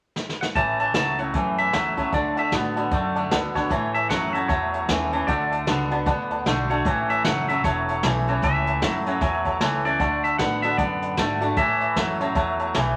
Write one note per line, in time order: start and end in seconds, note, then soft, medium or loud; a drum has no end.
0.16 snare medium
0.29 snare medium
0.41 0.46 F#5 medium
0.41 snare medium
0.55 0.94 A1 medium
0.55 1.31 A2 medium
0.55 0.78 A2 medium
0.55 0.78 E3 loud
0.55 0.70 C#5 loud
0.55 0.70 E5 medium
0.55 0.79 A5 loud
0.55 0.70 A5 loud
0.55 kick loud
0.55 closed hi-hat medium
0.79 0.94 A2 medium
0.79 0.94 E3 medium
0.79 0.89 C#5 medium
0.79 0.89 E5 medium
0.79 0.93 A5 medium
0.79 0.89 A5 loud
0.79 closed hi-hat medium
0.94 1.33 C#2 medium
0.94 1.17 A2 medium
0.94 1.18 E3 medium
0.94 1.17 F#3 medium
0.94 1.18 A3 medium
0.94 1.19 C#4 medium
0.94 1.10 C#5 medium
0.94 1.10 E5 medium
0.94 1.19 A5 loud
0.94 1.10 A5 medium
0.94 snare loud
0.94 closed hi-hat medium
1.18 1.33 A2 medium
1.18 1.34 F#3 medium
1.18 1.35 C#4 soft
1.18 1.34 E4 medium
1.18 1.28 C#5 medium
1.18 1.28 E5 medium
1.18 1.58 F#5 medium
1.18 1.28 A5 medium
1.18 closed hi-hat medium
1.33 2.11 E2 medium
1.33 1.72 F#2 medium
1.33 1.56 A2 medium
1.33 1.57 E3 medium
1.33 1.49 C#5 medium
1.33 1.49 E5 medium
1.33 1.49 A5 medium
1.33 kick loud
1.33 closed hi-hat medium
1.58 1.73 A2 medium
1.58 1.73 E3 medium
1.58 1.67 C#5 medium
1.58 1.68 E5 medium
1.58 2.15 E5 loud
1.58 1.68 A5 medium
1.58 closed hi-hat medium
1.73 1.96 E2 medium
1.73 1.96 A2 medium
1.73 1.97 E3 medium
1.73 1.96 F#3 medium
1.73 1.97 A3 medium
1.73 1.98 C#4 medium
1.73 1.96 E4 medium
1.73 1.88 C#5 medium
1.73 1.88 E5 medium
1.73 1.88 A5 medium
1.73 snare loud
1.73 closed hi-hat medium
1.97 2.12 A2 medium
1.97 2.12 F#3 medium
1.97 2.13 C#4 soft
1.97 2.12 E4 medium
1.97 2.07 C#5 medium
1.97 2.07 E5 medium
1.97 2.07 A5 medium
1.97 muted upright bass stroke soft
1.97 kick medium
1.97 closed hi-hat medium
2.12 2.51 D2 medium
2.12 2.35 D3 medium
2.12 2.51 D3 loud
2.12 2.35 A3 loud
2.12 2.27 D5 medium
2.12 2.36 D5 medium
2.12 2.28 F#5 medium
2.12 2.28 A5 loud
2.12 kick loud
2.12 closed hi-hat medium
2.36 2.51 D3 medium
2.36 2.52 A3 medium
2.36 2.46 D5 medium
2.36 2.54 E5 medium
2.36 2.46 F#5 medium
2.36 2.46 A5 loud
2.36 closed hi-hat medium
2.52 2.91 A2 medium
2.52 2.75 D3 medium
2.52 2.76 A3 medium
2.52 2.75 B3 medium
2.52 2.76 D4 medium
2.52 2.75 F#4 medium
2.52 2.67 D5 medium
2.52 2.67 F#5 medium
2.52 3.32 F#5 medium
2.52 2.67 A5 medium
2.52 snare loud
2.52 closed hi-hat medium
2.76 2.91 D3 medium
2.76 2.91 B3 medium
2.76 2.92 D4 soft
2.76 2.91 F#4 medium
2.76 2.86 D5 medium
2.76 2.86 F#5 medium
2.76 2.86 A5 medium
2.76 closed hi-hat medium
2.91 3.30 F#2 medium
2.91 3.68 A2 medium
2.91 3.14 D3 medium
2.91 3.15 A3 medium
2.91 3.06 D5 medium
2.91 3.07 F#5 medium
2.91 3.07 A5 medium
2.91 kick loud
2.91 closed hi-hat medium
3.15 3.30 D3 medium
3.15 3.30 A3 medium
3.15 3.25 D5 medium
3.15 3.25 F#5 medium
3.15 3.25 A5 medium
3.15 closed hi-hat medium
3.30 3.69 D2 medium
3.30 3.54 D3 medium
3.30 3.53 D3 medium
3.30 3.54 A3 medium
3.30 3.54 B3 medium
3.30 3.55 D4 medium
3.30 3.53 F#4 medium
3.30 3.46 D5 loud
3.30 3.46 F#5 loud
3.30 3.46 A5 loud
3.30 snare loud
3.30 closed hi-hat medium
3.54 3.70 D3 medium
3.54 3.70 B3 medium
3.54 3.71 D4 soft
3.54 3.70 F#4 medium
3.54 3.96 C#5 medium
3.54 3.65 D5 medium
3.54 3.64 F#5 medium
3.54 3.65 A5 loud
3.54 kick medium
3.54 snare soft
3.54 closed hi-hat medium
3.70 4.46 A2 medium
3.70 4.09 A2 medium
3.70 4.07 A2 medium
3.70 4.08 E3 loud
3.70 3.85 C#5 loud
3.70 3.85 E5 medium
3.70 3.85 A5 loud
3.70 kick loud
3.70 closed hi-hat medium
3.95 4.04 C#5 medium
3.95 4.09 E5 medium
3.95 4.04 E5 medium
3.95 4.04 A5 medium
3.95 closed hi-hat medium
4.09 4.48 F#2 medium
4.09 4.32 A2 medium
4.09 4.33 E3 medium
4.09 4.33 F#3 medium
4.09 4.33 A3 medium
4.09 4.34 C#4 medium
4.09 4.32 E4 medium
4.09 4.24 C#5 medium
4.09 4.25 E5 medium
4.09 4.33 F#5 loud
4.09 4.25 A5 medium
4.09 snare loud
4.09 closed hi-hat medium
4.33 4.48 A2 medium
4.33 4.49 F#3 medium
4.33 4.49 C#4 soft
4.33 4.48 E4 medium
4.33 4.43 C#5 medium
4.33 4.49 E5 loud
4.33 4.43 E5 medium
4.33 4.43 A5 medium
4.33 closed hi-hat medium
4.48 5.25 E2 medium
4.48 4.87 E2 medium
4.48 4.86 A2 medium
4.48 4.86 F#3 medium
4.48 5.24 C#5 medium
4.48 4.64 C#5 medium
4.48 4.64 E5 medium
4.48 4.64 A5 loud
4.48 kick loud
4.48 snare soft
4.48 closed hi-hat medium
4.73 4.83 C#5 medium
4.73 4.83 E5 medium
4.73 4.83 A5 medium
4.73 closed hi-hat medium
4.88 5.27 D#2 medium
4.88 5.11 A2 medium
4.88 5.12 E3 medium
4.88 5.11 E3 medium
4.88 5.12 A3 medium
4.88 5.13 C#4 medium
4.88 5.11 E4 medium
4.88 5.03 C#5 medium
4.88 5.03 E5 medium
4.88 5.03 F#5 medium
4.88 snare loud
4.88 closed hi-hat medium
5.12 5.27 A2 medium
5.12 5.27 E3 medium
5.12 5.28 C#4 soft
5.12 5.27 E4 medium
5.12 5.22 C#5 medium
5.12 5.22 E5 medium
5.12 5.22 A5 loud
5.12 closed hi-hat medium
5.27 5.66 D2 loud
5.27 5.64 D3 medium
5.27 5.65 D3 medium
5.27 5.65 A3 medium
5.27 5.87 D5 medium
5.27 5.43 D5 loud
5.27 5.43 F#5 medium
5.27 5.43 A5 loud
5.27 kick loud
5.27 closed hi-hat medium
5.52 5.61 D5 medium
5.52 5.61 F#5 medium
5.52 5.61 A5 medium
5.52 closed hi-hat medium
5.67 6.06 C#2 loud
5.67 5.90 D3 medium
5.67 5.89 D3 medium
5.67 5.90 A3 medium
5.67 5.89 B3 medium
5.67 5.91 D4 medium
5.67 5.89 F#4 medium
5.67 5.82 D5 medium
5.67 5.82 F#5 medium
5.67 5.82 A5 medium
5.67 snare loud
5.67 closed hi-hat medium
5.91 6.05 D3 medium
5.91 6.06 B3 loud
5.91 6.07 D4 soft
5.91 6.06 F#4 medium
5.91 6.00 D5 medium
5.91 6.00 F#5 medium
5.91 6.01 A5 medium
5.91 closed hi-hat medium
6.06 6.45 D2 medium
6.06 6.82 A2 medium
6.06 6.43 D3 medium
6.06 6.43 B3 medium
6.06 6.21 D5 loud
6.06 6.21 F#5 loud
6.06 6.21 A5 loud
6.06 kick loud
6.06 closed hi-hat medium
6.30 6.40 D5 medium
6.30 6.40 F#5 medium
6.30 6.40 A5 medium
6.30 closed hi-hat medium
6.45 6.84 B1 medium
6.45 6.69 D3 medium
6.45 6.68 D3 medium
6.45 6.69 A3 medium
6.45 6.68 A3 medium
6.45 6.70 D4 medium
6.45 6.68 F#4 medium
6.45 6.61 D5 medium
6.45 6.61 F#5 medium
6.45 6.61 A5 medium
6.45 snare loud
6.45 closed hi-hat medium
6.69 6.84 D3 medium
6.69 6.84 A3 medium
6.69 6.86 D4 soft
6.69 6.84 F#4 medium
6.69 7.11 C#5 medium
6.69 6.79 D5 medium
6.69 6.80 F#5 medium
6.69 6.80 A5 medium
6.69 closed hi-hat medium
6.85 7.24 A1 medium
6.85 7.61 A2 loud
6.85 7.22 A2 medium
6.85 7.22 E3 medium
6.85 7.00 C#5 medium
6.85 7.00 E5 medium
6.85 7.00 A5 loud
6.85 kick loud
6.85 closed hi-hat medium
7.10 7.19 C#5 medium
7.10 7.25 E5 medium
7.10 7.19 E5 medium
7.10 7.19 A5 medium
7.10 closed hi-hat medium
7.24 7.63 F#1 medium
7.24 7.47 A2 medium
7.24 7.48 E3 medium
7.24 7.47 F#3 medium
7.24 7.48 A3 medium
7.24 7.49 C#4 medium
7.24 7.47 E4 loud
7.24 7.40 C#5 medium
7.24 7.40 E5 medium
7.24 7.47 F#5 loud
7.24 7.40 A5 medium
7.24 snare loud
7.24 closed hi-hat medium
7.48 7.63 A2 medium
7.48 7.63 F#3 medium
7.48 7.64 C#4 soft
7.48 7.63 E4 medium
7.48 7.58 C#5 medium
7.48 7.63 E5 medium
7.48 7.58 E5 medium
7.48 7.59 A5 medium
7.48 closed hi-hat medium
7.64 8.02 E1 medium
7.64 8.40 E2 medium
7.64 8.01 A2 medium
7.64 8.01 F#3 medium
7.64 8.45 C#5 loud
7.64 7.79 C#5 medium
7.64 7.79 E5 medium
7.64 7.79 A5 loud
7.64 kick loud
7.64 snare soft
7.64 closed hi-hat medium
7.89 7.98 C#5 medium
7.89 7.98 E5 medium
7.89 7.98 A5 medium
7.89 closed hi-hat medium
8.03 8.42 B1 loud
8.03 8.25 A2 medium
8.03 8.26 E3 medium
8.03 8.26 A3 medium
8.03 8.27 C#4 medium
8.03 8.26 E4 loud
8.03 8.18 C#5 medium
8.03 8.18 E5 medium
8.03 8.18 A5 medium
8.03 snare loud
8.03 closed hi-hat medium
8.27 8.42 A2 medium
8.27 8.42 E3 medium
8.27 8.43 C#4 medium
8.27 8.42 E4 medium
8.27 8.37 C#5 medium
8.27 8.37 E5 medium
8.27 8.37 A5 medium
8.27 closed hi-hat medium
8.42 8.81 C#2 medium
8.42 9.18 A2 loud
8.42 8.79 A2 medium
8.42 8.80 E3 medium
8.42 8.57 C#5 medium
8.42 8.58 E5 medium
8.42 9.03 E5 medium
8.42 8.58 A5 loud
8.42 kick loud
8.42 closed hi-hat medium
8.67 8.76 C#5 medium
8.67 8.76 E5 medium
8.67 8.76 A5 medium
8.67 closed hi-hat medium
8.82 9.20 F#2 medium
8.82 9.04 A2 medium
8.82 9.05 E3 medium
8.82 9.05 F#3 medium
8.82 9.06 A3 loud
8.82 9.06 C#4 loud
8.82 9.06 E4 loud
8.82 8.96 C#5 medium
8.82 8.97 E5 medium
8.82 8.97 F#5 medium
8.82 snare loud
8.82 closed hi-hat medium
9.06 9.20 A2 medium
9.06 9.21 F#3 medium
9.06 9.22 C#4 soft
9.06 9.21 E4 medium
9.06 9.15 C#5 medium
9.06 9.15 E5 medium
9.06 9.16 G#5 medium
9.06 closed hi-hat medium
9.21 9.59 E2 medium
9.21 9.97 E2 medium
9.21 9.58 A2 medium
9.21 9.58 F#3 medium
9.21 9.36 C#5 loud
9.21 9.36 E5 medium
9.21 9.36 G#5 loud
9.21 kick loud
9.21 snare soft
9.21 closed hi-hat medium
9.45 9.55 C#5 medium
9.45 9.55 E5 medium
9.45 9.55 A5 medium
9.45 kick medium
9.45 closed hi-hat medium
9.60 9.99 C#2 medium
9.60 9.83 A2 medium
9.60 9.84 E3 medium
9.60 9.83 E3 medium
9.60 9.84 A3 medium
9.60 9.85 C#4 medium
9.60 9.84 E4 loud
9.60 9.75 C#5 medium
9.60 9.75 E5 medium
9.60 9.75 A5 loud
9.60 snare loud
9.60 closed hi-hat medium
9.85 9.99 A2 medium
9.85 9.99 E3 medium
9.85 10.01 C#4 soft
9.85 10.00 E4 medium
9.85 9.94 C#5 medium
9.85 10.23 D5 loud
9.85 9.94 E5 medium
9.85 9.94 A5 medium
9.85 closed hi-hat medium
10.00 10.38 D2 medium
10.00 10.37 D3 medium
10.00 10.38 D3 loud
10.00 10.37 A3 loud
10.00 10.14 D5 medium
10.00 10.15 F#5 medium
10.00 10.15 A5 loud
10.00 kick loud
10.00 closed hi-hat medium
10.24 10.33 D5 medium
10.24 10.38 E5 medium
10.24 10.33 F#5 medium
10.24 10.33 A5 medium
10.24 closed hi-hat medium
10.38 10.77 A2 medium
10.38 10.61 D3 medium
10.38 10.63 D3 medium
10.38 10.63 A3 medium
10.38 10.61 B3 medium
10.38 10.63 D4 loud
10.38 10.62 F#4 medium
10.38 10.54 D5 medium
10.38 10.61 F#5 loud
10.38 10.54 F#5 medium
10.38 10.54 A5 medium
10.38 snare loud
10.38 closed hi-hat medium
10.62 10.77 D3 medium
10.62 10.78 B3 medium
10.62 10.79 D4 soft
10.62 10.78 F#4 medium
10.62 10.73 D5 medium
10.62 10.77 E5 medium
10.62 10.73 F#5 medium
10.62 10.73 A5 medium
10.62 closed hi-hat medium
10.77 11.17 F#2 medium
10.77 11.54 A2 medium
10.77 11.15 D3 medium
10.77 11.16 B3 medium
10.77 11.57 D5 medium
10.77 10.93 D5 medium
10.77 10.93 F#5 medium
10.77 10.93 A5 loud
10.77 kick loud
10.77 closed hi-hat medium
11.02 11.12 D5 medium
11.02 11.12 F#5 medium
11.02 11.12 B5 medium
11.02 closed hi-hat medium
11.17 11.56 G#2 medium
11.17 11.41 D3 medium
11.17 11.40 D3 medium
11.17 11.41 A3 medium
11.17 11.41 D4 medium
11.17 11.39 F#4 medium
11.17 11.32 D5 medium
11.17 11.33 F#5 medium
11.17 11.33 A5 medium
11.17 snare loud
11.17 closed hi-hat medium
11.40 11.56 D3 medium
11.40 11.56 A3 medium
11.40 11.57 D4 medium
11.40 11.56 F#4 medium
11.40 11.51 D5 medium
11.40 11.51 F#5 medium
11.40 11.51 A5 loud
11.40 closed hi-hat medium
11.56 11.95 A2 medium
11.56 12.33 A2 loud
11.56 11.94 A2 medium
11.56 11.94 E3 loud
11.56 11.72 C#5 medium
11.56 11.72 E5 medium
11.56 12.17 E5 medium
11.56 11.72 A5 loud
11.56 kick loud
11.56 closed hi-hat medium
11.81 11.90 C#5 medium
11.81 11.90 E5 medium
11.81 11.91 B5 medium
11.81 closed hi-hat medium
11.96 12.35 F#2 medium
11.96 12.19 A2 medium
11.96 12.20 E3 medium
11.96 12.19 F#3 medium
11.96 12.20 A3 loud
11.96 12.20 C#4 medium
11.96 12.19 E4 loud
11.96 12.11 C#5 medium
11.96 12.11 E5 medium
11.96 12.11 A5 medium
11.96 snare loud
11.96 closed hi-hat medium
12.20 12.35 A2 medium
12.20 12.35 F#3 medium
12.20 12.36 C#4 medium
12.20 12.35 E4 medium
12.20 12.30 C#5 medium
12.20 12.30 E5 medium
12.20 12.30 A5 medium
12.20 closed hi-hat medium
12.35 12.74 E2 medium
12.35 12.96 E2 medium
12.35 12.73 A2 medium
12.35 12.73 F#3 loud
12.35 12.50 C#5 loud
12.35 12.51 E5 loud
12.35 12.51 A5 loud
12.35 kick loud
12.35 closed hi-hat medium
12.59 12.69 C#5 medium
12.59 12.69 E5 medium
12.59 12.69 A5 medium
12.59 closed hi-hat medium
12.74 12.96 B1 loud
12.74 12.96 A2 medium
12.74 12.96 E3 medium
12.74 12.96 E3 loud
12.74 12.96 A3 medium
12.74 12.96 C#4 medium
12.74 12.96 E4 loud
12.74 12.90 C#5 medium
12.74 12.90 E5 medium
12.74 12.90 A5 medium
12.74 snare loud
12.74 closed hi-hat medium